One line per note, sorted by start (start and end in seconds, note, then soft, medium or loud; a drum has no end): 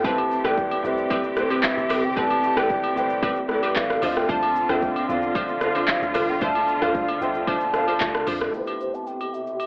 0.03 0.40 A1 loud
0.03 3.99 C3 medium
0.03 0.36 A3 medium
0.03 0.41 C4 loud
0.03 3.98 C4 medium
0.03 0.36 E4 medium
0.03 3.99 G4 medium
0.03 0.41 G4 medium
0.03 0.37 G4 medium
0.03 0.42 B4 loud
0.03 0.37 B4 medium
0.03 0.38 C5 medium
0.03 0.47 A5 loud
0.03 kick loud
0.03 shaker medium
0.17 high agogo medium
0.17 shaker medium
0.31 shaker medium
0.43 0.79 A1 loud
0.43 0.76 A3 medium
0.43 0.54 C4 medium
0.43 0.76 E4 medium
0.43 0.54 G4 medium
0.43 0.77 G4 medium
0.43 0.54 B4 medium
0.43 0.77 B4 medium
0.43 0.78 D5 medium
0.43 0.86 G5 loud
0.43 cross-stick loud
0.43 shaker medium
0.57 kick medium
0.57 shaker medium
0.71 high agogo medium
0.71 shaker soft
0.83 1.07 C2 medium
0.83 1.26 A3 medium
0.83 1.27 E4 medium
0.83 1.27 G4 medium
0.83 1.28 B4 medium
0.83 0.92 C5 medium
0.83 1.37 E5 medium
0.83 shaker loud
0.93 1.31 D5 medium
0.97 shaker medium
1.10 1.20 C4 medium
1.10 1.20 G4 medium
1.10 1.21 B4 loud
1.10 kick loud
1.10 high agogo medium
1.10 shaker medium
1.24 shaker medium
1.36 2.01 A3 medium
1.36 2.01 E4 medium
1.36 2.01 G4 medium
1.36 2.02 B4 medium
1.36 2.02 C5 medium
1.36 cross-stick medium
1.36 shaker loud
1.50 1.60 C4 medium
1.50 1.60 G4 medium
1.50 1.60 B4 medium
1.50 high agogo medium
1.50 shaker medium
1.63 2.06 E5 medium
1.63 kick medium
1.63 clap loud
1.63 low woodblock medium
1.63 shaker medium
1.77 1.89 A1 medium
1.77 shaker medium
1.89 2.14 G1 medium
1.89 2.00 C4 medium
1.89 2.00 G4 medium
1.89 2.00 B4 medium
1.89 cross-stick medium
1.89 open hi-hat medium
1.89 high agogo medium
1.89 shaker medium
2.04 2.19 G5 loud
2.04 shaker soft
2.15 2.52 A1 loud
2.15 2.48 A3 medium
2.15 2.54 C4 loud
2.15 2.49 E4 medium
2.15 2.54 G4 medium
2.15 2.49 G4 medium
2.15 2.54 B4 loud
2.15 2.50 B4 medium
2.15 2.50 D5 medium
2.15 2.59 A5 loud
2.15 kick loud
2.15 shaker medium
2.30 high agogo medium
2.30 shaker medium
2.44 shaker medium
2.56 2.92 A1 loud
2.56 2.88 A3 medium
2.56 2.66 C4 medium
2.56 2.88 E4 medium
2.56 2.66 G4 medium
2.56 2.89 G4 medium
2.56 2.66 B4 medium
2.56 2.89 B4 medium
2.56 2.90 D5 medium
2.56 2.97 G5 loud
2.56 cross-stick loud
2.56 shaker medium
2.70 kick medium
2.70 shaker medium
2.83 high agogo medium
2.83 shaker soft
2.95 3.20 G1 medium
2.95 3.39 A3 medium
2.95 3.39 E4 medium
2.95 3.40 G4 medium
2.95 3.40 B4 medium
2.95 3.04 C5 medium
2.95 3.46 G5 loud
2.95 shaker medium
3.05 3.44 D5 medium
3.10 shaker medium
3.23 3.33 C4 medium
3.23 3.33 G4 medium
3.23 3.33 B4 loud
3.23 kick loud
3.23 high agogo medium
3.23 shaker medium
3.36 shaker medium
3.48 4.02 A3 medium
3.48 4.02 E4 medium
3.48 4.03 G4 medium
3.48 4.03 B4 medium
3.48 4.04 D5 medium
3.48 cross-stick medium
3.48 shaker loud
3.63 3.72 C4 medium
3.63 3.72 G4 medium
3.63 3.73 B4 medium
3.63 high agogo medium
3.63 shaker medium
3.75 4.00 A1 loud
3.75 4.18 F5 loud
3.75 kick loud
3.75 clap loud
3.75 low woodblock medium
3.75 shaker medium
3.90 cross-stick loud
3.90 shaker medium
4.01 4.26 D2 loud
4.01 4.55 D3 medium
4.01 8.50 D3 medium
4.01 6.13 C4 medium
4.01 4.12 D4 medium
4.01 4.55 D4 medium
4.01 4.13 F4 medium
4.01 8.50 F4 medium
4.01 4.56 F4 medium
4.01 4.13 C5 medium
4.01 4.56 C5 medium
4.01 4.10 D#5 medium
4.01 open hi-hat medium
4.01 high agogo medium
4.01 shaker loud
4.12 4.60 E5 medium
4.17 4.31 G5 loud
4.17 cross-stick loud
4.17 shaker medium
4.29 4.65 D2 loud
4.29 4.66 D4 loud
4.29 4.66 F4 medium
4.29 4.66 C5 loud
4.29 4.72 A5 loud
4.29 kick loud
4.29 shaker medium
4.42 high agogo medium
4.42 shaker medium
4.56 shaker medium
4.68 5.04 D2 loud
4.68 5.00 D3 medium
4.68 5.01 D4 medium
4.68 4.79 D4 medium
4.68 4.79 F4 medium
4.68 5.01 F4 medium
4.68 4.79 C5 medium
4.68 5.02 C5 medium
4.68 5.02 E5 medium
4.68 5.09 G5 loud
4.68 cross-stick loud
4.68 shaker medium
4.82 kick medium
4.82 shaker medium
4.96 high agogo medium
4.96 shaker soft
5.07 5.32 E2 loud
5.07 5.51 D3 medium
5.07 5.51 D4 medium
5.07 5.52 F4 medium
5.07 5.52 C5 medium
5.07 5.53 D5 medium
5.07 5.58 F5 medium
5.07 shaker medium
5.22 shaker medium
5.35 5.45 D4 medium
5.35 5.45 F4 medium
5.35 5.45 C5 loud
5.35 kick loud
5.35 high agogo medium
5.35 shaker medium
5.48 shaker medium
5.60 6.25 D3 medium
5.60 6.26 D4 medium
5.60 6.26 F4 medium
5.60 6.27 C5 medium
5.60 6.27 F5 medium
5.60 cross-stick medium
5.60 shaker loud
5.75 5.85 D4 medium
5.75 5.85 F4 medium
5.75 5.85 C5 medium
5.75 high agogo medium
5.75 shaker medium
5.88 6.31 F5 loud
5.88 kick medium
5.88 clap loud
5.88 low woodblock medium
5.88 shaker medium
6.02 6.13 D2 medium
6.02 shaker medium
6.14 6.38 C2 loud
6.14 8.51 B2 medium
6.14 6.25 D4 medium
6.14 6.25 F4 medium
6.14 6.25 C5 medium
6.14 cross-stick loud
6.14 open hi-hat medium
6.14 high agogo medium
6.14 shaker loud
6.29 6.41 G5 medium
6.29 shaker medium
6.40 6.77 D2 loud
6.40 6.73 D3 medium
6.40 6.73 D4 medium
6.40 6.78 D4 loud
6.40 6.78 F4 medium
6.40 6.74 F4 medium
6.40 6.79 C5 loud
6.40 6.74 C5 medium
6.40 6.75 E5 medium
6.40 6.84 A5 loud
6.40 kick loud
6.40 shaker medium
6.55 high agogo medium
6.55 shaker medium
6.68 shaker medium
6.81 7.17 D2 loud
6.81 7.13 D3 medium
6.81 6.91 D4 medium
6.81 7.13 D4 medium
6.81 6.91 F4 medium
6.81 7.14 F4 medium
6.81 6.91 C5 medium
6.81 7.14 C5 medium
6.81 7.23 F5 loud
6.81 7.15 F5 medium
6.81 cross-stick loud
6.81 shaker medium
6.94 kick medium
6.94 shaker medium
7.08 high agogo medium
7.08 shaker soft
7.20 7.45 C2 medium
7.20 7.63 D3 medium
7.20 7.64 D4 medium
7.20 7.64 F4 medium
7.20 7.65 C5 medium
7.20 7.65 E5 medium
7.20 7.50 G5 loud
7.20 shaker loud
7.34 shaker medium
7.47 7.57 D4 medium
7.47 7.58 F4 medium
7.47 7.58 C5 loud
7.47 8.28 A5 loud
7.47 kick loud
7.47 high agogo medium
7.47 shaker medium
7.61 shaker medium
7.73 8.38 D3 medium
7.73 8.38 D4 medium
7.73 8.39 F4 medium
7.73 8.39 C5 medium
7.73 cross-stick medium
7.73 shaker loud
7.77 8.40 F5 medium
7.88 7.97 D4 medium
7.88 7.97 F4 medium
7.88 7.97 C5 medium
7.88 high agogo medium
7.88 shaker medium
8.00 8.24 D2 loud
8.00 kick loud
8.00 clap loud
8.00 low woodblock medium
8.00 shaker medium
8.15 cross-stick loud
8.15 shaker medium
8.27 8.51 F2 medium
8.27 8.37 D4 medium
8.27 8.37 F4 medium
8.27 8.37 C5 medium
8.27 open hi-hat medium
8.27 high agogo medium
8.27 shaker medium
8.42 cross-stick loud
8.42 shaker soft
8.50 9.66 B2 medium
8.50 9.66 C3 medium
8.50 9.66 A3 medium
8.50 9.66 E4 medium
8.50 9.66 G4 medium
8.50 shaker medium
8.56 9.66 B4 medium
8.56 9.66 C5 medium
8.67 high agogo medium
8.67 shaker soft
8.81 8.96 C5 medium
8.81 shaker medium
8.94 9.09 A5 loud
8.94 shaker soft
9.07 9.35 G5 loud
9.07 shaker medium
9.21 high agogo medium
9.21 shaker soft
9.34 9.66 E5 medium
9.34 shaker medium
9.47 shaker soft
9.60 high agogo medium
9.60 shaker medium